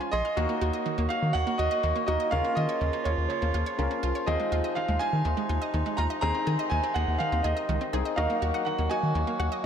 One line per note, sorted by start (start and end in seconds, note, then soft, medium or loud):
0.00 0.20 C#3 medium
0.00 0.20 F3 medium
0.00 0.20 G#3 medium
0.00 0.33 G#3 medium
0.00 0.33 C#4 medium
0.00 0.11 C#4 medium
0.00 0.20 F4 medium
0.00 0.33 F4 medium
0.00 0.11 G#5 medium
0.11 0.22 A#1 medium
0.11 0.24 G#4 medium
0.11 1.13 D#5 loud
0.11 0.35 C6 medium
0.25 0.36 F5 medium
0.37 0.46 D#2 loud
0.37 2.30 D#3 medium
0.37 0.48 D#3 loud
0.37 2.30 F#3 medium
0.37 2.04 A#3 medium
0.37 4.23 A#3 medium
0.37 2.04 D#4 medium
0.37 2.04 F#4 medium
0.37 2.30 F#4 medium
0.49 0.60 A#3 medium
0.61 0.71 D#2 loud
0.61 0.72 F#4 medium
0.73 0.84 D#5 medium
0.86 0.97 D#3 medium
0.98 1.07 D#2 loud
0.98 1.09 A#3 medium
1.09 1.21 F#4 medium
1.09 1.32 F5 loud
1.22 1.32 D#3 loud
1.33 1.44 D#2 loud
1.33 1.45 D#3 medium
1.33 1.59 F#5 loud
1.47 1.58 A#3 medium
1.58 1.68 D#2 loud
1.58 1.70 F#4 medium
1.58 2.05 D#5 loud
1.71 1.82 D#5 medium
1.83 1.93 D#2 loud
1.83 1.94 D#3 medium
1.96 2.06 A#3 medium
2.06 2.17 D#2 loud
2.06 2.32 A#3 medium
2.06 2.32 D#4 soft
2.06 2.32 F#4 medium
2.06 2.19 F#4 medium
2.06 2.30 D#5 medium
2.20 2.31 D#5 medium
2.31 2.42 D#2 loud
2.31 2.43 C#3 medium
2.31 4.25 C#3 medium
2.31 6.19 F3 medium
2.31 3.76 C#4 medium
2.31 3.76 F4 medium
2.31 4.25 F4 medium
2.31 3.76 A#4 medium
2.31 2.54 F5 loud
2.44 2.55 A#3 medium
2.55 2.66 D#3 loud
2.55 2.67 F4 medium
2.55 3.06 D#5 loud
2.69 2.80 C#5 medium
2.81 2.90 D#2 loud
2.81 2.92 C#3 medium
2.93 3.04 A#3 medium
3.04 3.15 D#2 loud
3.04 3.16 F4 medium
3.04 3.10 C#5 medium
3.18 3.27 D#2 loud
3.28 3.41 C#3 medium
3.28 3.98 C#5 medium
3.42 3.51 D#2 loud
3.42 3.53 A#3 medium
3.54 3.64 D#2 loud
3.54 3.65 F4 medium
3.66 3.77 C#5 medium
3.78 3.88 C#2 medium
3.78 3.89 C#3 medium
3.78 4.27 C#4 medium
3.78 4.26 F4 soft
3.78 4.27 A#4 medium
3.91 4.02 A#3 medium
4.03 4.12 C2 loud
4.03 4.14 F4 medium
4.15 4.26 C#5 medium
4.26 4.37 D#2 loud
4.26 6.20 C3 medium
4.26 4.38 D#3 loud
4.26 8.00 G#3 medium
4.26 6.18 C4 medium
4.26 8.00 D#4 medium
4.26 6.18 F4 medium
4.26 6.18 G#4 medium
4.26 4.77 D#5 loud
4.40 4.50 G#3 medium
4.52 4.61 D#2 loud
4.52 4.63 F4 medium
4.64 4.75 D#5 medium
4.75 4.87 D#3 medium
4.75 5.01 F5 loud
4.88 4.98 D#2 loud
4.88 4.99 G#3 medium
4.99 5.11 F4 medium
4.99 6.00 G#5 loud
5.13 5.22 D#3 loud
5.25 5.34 D#2 loud
5.25 5.36 D#3 medium
5.37 5.48 G#3 medium
5.49 5.59 D#2 loud
5.49 5.60 F4 medium
5.62 5.72 D#5 medium
5.74 5.83 D#2 loud
5.74 5.85 D#3 medium
5.86 5.97 G#3 medium
5.97 6.07 D#2 loud
5.97 6.09 F4 medium
5.97 6.02 A#5 loud
6.10 6.21 D#5 medium
6.21 6.32 D#2 loud
6.21 8.00 C3 medium
6.21 6.33 D#3 loud
6.21 9.66 D#3 medium
6.21 7.90 C4 medium
6.21 7.90 D#4 medium
6.21 7.90 G#4 medium
6.21 6.67 A#5 loud
6.35 6.45 C4 medium
6.47 6.56 D#3 loud
6.47 6.58 G#4 medium
6.59 6.70 D#5 medium
6.70 6.81 D#2 loud
6.70 6.82 D#3 medium
6.70 6.93 G#5 loud
6.83 6.94 C4 medium
6.94 7.05 D#2 loud
6.94 7.06 G#4 medium
6.94 7.20 F#5 loud
7.08 7.17 D#2 loud
7.18 7.31 D#3 medium
7.18 7.44 F5 loud
7.32 7.42 D#2 loud
7.32 7.43 C4 medium
7.43 7.54 D#2 loud
7.43 7.55 G#4 medium
7.43 7.89 D#5 medium
7.57 7.67 D#5 medium
7.69 7.78 C#2 loud
7.69 7.80 D#3 medium
7.81 7.92 C4 medium
7.93 8.03 C2 medium
7.93 8.17 C4 medium
7.93 8.16 D#4 soft
7.93 8.17 G#4 medium
7.93 8.04 G#4 medium
8.05 8.16 D#5 medium
8.16 8.27 D#2 loud
8.16 8.28 D#3 medium
8.16 9.66 F#3 medium
8.16 9.66 A#3 medium
8.16 9.66 D#4 medium
8.16 9.66 F#4 medium
8.16 9.66 A#4 medium
8.16 8.26 D#5 loud
8.16 8.62 F5 medium
8.30 8.41 A#3 medium
8.42 8.51 D#2 loud
8.42 8.53 F#4 medium
8.54 8.65 D#5 medium
8.54 8.63 F#5 medium
8.65 8.77 D#3 medium
8.65 8.88 F#5 medium
8.78 8.88 D#2 loud
8.78 8.89 A#3 medium
8.90 9.02 F#4 medium
8.90 9.08 D#5 medium
8.90 9.66 G#5 loud
9.03 9.12 D#3 loud
9.15 9.24 D#2 loud
9.15 9.26 D#3 medium
9.27 9.38 A#3 medium
9.39 9.49 D#2 loud
9.39 9.50 F#4 medium
9.39 9.57 F#5 medium
9.52 9.63 D#5 medium